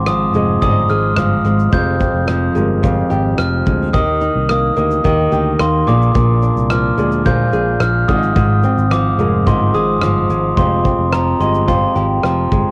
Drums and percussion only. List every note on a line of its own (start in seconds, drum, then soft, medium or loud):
0.06 cross-stick loud
0.06 shaker medium
0.34 shaker soft
0.62 kick medium
0.62 shaker medium
0.89 shaker soft
1.16 cross-stick loud
1.16 shaker medium
1.45 cross-stick soft
1.45 shaker soft
1.59 shaker soft
1.72 kick medium
1.72 shaker medium
2.00 kick medium
2.00 shaker soft
2.28 cross-stick medium
2.28 shaker medium
2.55 shaker soft
2.84 kick medium
2.84 shaker medium
3.10 shaker soft
3.38 cross-stick loud
3.38 shaker medium
3.66 kick medium
3.66 cross-stick soft
3.66 shaker soft
3.94 kick loud
3.94 shaker medium
4.21 shaker soft
4.49 cross-stick loud
4.49 shaker medium
4.76 shaker soft
4.91 shaker soft
5.05 kick medium
5.05 shaker medium
5.32 shaker soft
5.60 cross-stick loud
5.60 shaker medium
5.88 cross-stick soft
5.88 shaker soft
6.02 shaker soft
6.15 kick loud
6.15 shaker medium
6.42 shaker soft
6.57 shaker soft
6.70 cross-stick loud
6.70 shaker medium
6.98 shaker soft
7.12 shaker soft
7.26 kick medium
7.26 shaker medium
7.53 shaker soft
7.80 cross-stick loud
7.80 shaker medium
8.08 kick medium
8.08 cross-stick soft
8.08 shaker soft
8.23 shaker soft
8.36 kick loud
8.36 shaker medium
8.63 shaker soft
8.78 shaker soft
8.91 cross-stick loud
8.91 shaker medium
9.19 shaker soft
9.47 kick medium
9.47 shaker medium
9.74 shaker soft
10.02 cross-stick loud
10.02 shaker medium
10.30 shaker soft
10.57 kick loud
10.57 shaker medium
10.85 kick medium
10.85 shaker soft
11.13 cross-stick loud
11.13 shaker medium
11.41 shaker soft
11.54 shaker soft
11.68 kick medium
11.68 shaker medium
11.96 shaker soft
12.23 cross-stick loud
12.23 shaker medium
12.51 kick medium
12.51 cross-stick soft
12.51 shaker soft